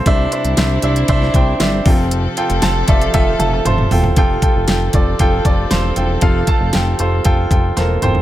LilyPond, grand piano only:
\new Staff \with { instrumentName = "Grand piano" } { \time 4/4 \key f \major \tempo 4 = 117 << { <c g>4. r2 c8~ | c4 r8 d''16 f''16 g''8. a''16 c'''4 | c4. r2 r8 | c4. r4. <bes bes'>8 <c' c''>8 | } \\ { <d' c'' e''>8 <d' c'' e''>8 <d' c'' e''>8 <d' c'' e''>8 <d' c'' e''>8 <d' c'' g''>8 <d' c'' e''>8 <f' a' g''>8~ | <f' a' g''>8 <f' a' g''>8 <f' a' a''>8 <f' a' e''>8 <f' a' e''>8 <f' a' a''>8 <f' a' c''>8 <f' a' g''>8 | <f' a' g''>8 <f' a' g''>8 <f' a' g''>8 <f' a' d''>8 <f' a' g''>8 <f' a' d''>8 <f' a' c''>8 <f' a' g''>8 | <f' a' f''>8 <f' a' a''>8 <f' a' g''>8 <f' a' c''>8 <f' a' g''>8 <f' a' g''>8 <f' a' c''>8 <f' a' g''>8 | } >> }